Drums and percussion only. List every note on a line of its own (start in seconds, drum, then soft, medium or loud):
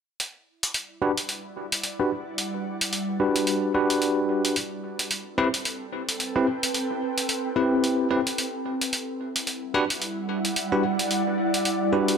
0.20 closed hi-hat soft
0.63 closed hi-hat medium
0.74 closed hi-hat soft
1.18 closed hi-hat medium
1.29 closed hi-hat soft
1.72 closed hi-hat medium
1.83 closed hi-hat medium
2.38 closed hi-hat medium
2.81 closed hi-hat medium
2.93 closed hi-hat soft
3.36 closed hi-hat medium
3.47 closed hi-hat soft
3.90 closed hi-hat medium
4.02 closed hi-hat medium
4.45 closed hi-hat medium
4.56 closed hi-hat medium
4.99 closed hi-hat medium
5.11 closed hi-hat medium
5.54 closed hi-hat medium
5.65 closed hi-hat medium
6.09 closed hi-hat medium
6.20 closed hi-hat medium
6.63 closed hi-hat medium
6.74 closed hi-hat soft
7.18 closed hi-hat medium
7.29 closed hi-hat soft
7.84 closed hi-hat soft
8.27 closed hi-hat medium
8.38 closed hi-hat medium
8.81 closed hi-hat medium
8.93 closed hi-hat soft
9.36 closed hi-hat medium
9.47 closed hi-hat soft
9.90 closed hi-hat medium
10.02 closed hi-hat soft
10.45 closed hi-hat medium
10.56 closed hi-hat soft
10.99 closed hi-hat medium
11.11 closed hi-hat soft
11.54 closed hi-hat medium
11.65 closed hi-hat soft
12.08 closed hi-hat medium